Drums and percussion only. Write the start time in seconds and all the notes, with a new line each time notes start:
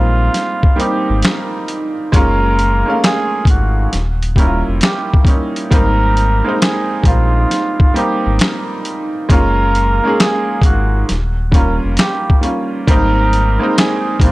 0.34 snare, closed hi-hat
0.63 kick
0.80 closed hi-hat
1.22 finger snap, snare, closed hi-hat
1.68 closed hi-hat
2.13 kick, closed hi-hat
2.59 closed hi-hat
3.04 finger snap, snare, closed hi-hat
3.45 kick, closed hi-hat
3.93 snare, closed hi-hat
4.22 closed hi-hat
4.36 kick, closed hi-hat
4.81 finger snap, snare, closed hi-hat
5.14 kick
5.25 kick, closed hi-hat
5.56 closed hi-hat
5.71 kick, closed hi-hat
6.17 closed hi-hat
6.62 finger snap, snare, closed hi-hat
7.04 kick, closed hi-hat
7.51 snare, closed hi-hat
7.80 kick
7.96 closed hi-hat
8.39 finger snap, snare, closed hi-hat
8.85 closed hi-hat
9.30 kick, closed hi-hat
9.75 closed hi-hat
10.20 finger snap, snare, closed hi-hat
10.62 kick, closed hi-hat
11.09 snare, closed hi-hat
11.52 kick, closed hi-hat
11.97 finger snap, snare, closed hi-hat
12.30 kick
12.43 closed hi-hat
12.88 kick, closed hi-hat
13.33 closed hi-hat
13.78 finger snap, snare, closed hi-hat
14.20 kick, closed hi-hat